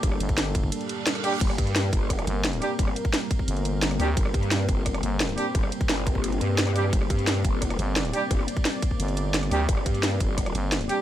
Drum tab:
CC |----------------|x---------------|----------------|----------------|
RD |b-b-b-b-b-b-b-b-|b-b-b-b-b-b-b-b-|b-b-b-b-b-b-b-b-|b-b-b-b-b-b-b-b-|
HH |x-xxx-x-xxx-xxo-|x-xxx-x-xxx-xxo-|x-xxx-x-xxx-xxo-|x-xxx-x-xxx-xxo-|
SD |-r--o-------orrr|-r--o---rr--o-r-|-r--o-------orrr|-r--o---rr--o-r-|
BD |o--o--oo--------|o-o---o-o-------|o--o--oo--------|o-o---o-o-------|

CC |----------------|----------------|----------------|----------------|
RD |b-b-b-b-b-b-b-b-|b-b-b-b-b-b-b-b-|b-b-b-b-b-b-b-b-|b-b-b-b-b-b-b-b-|
HH |x-xxx-x-xxx-xxo-|x-xxx-x-xxx-xxo-|x-xxx-x-xxx-xxo-|x-xxx-x-xxx-xxo-|
SD |-r--o-------orrr|-r--o---rr--o-r-|-r--o-------orrr|-r--o---rr--o-r-|
BD |o--o--oo--------|o-o---o-o-------|o--o--oo--------|o-o---o-o-------|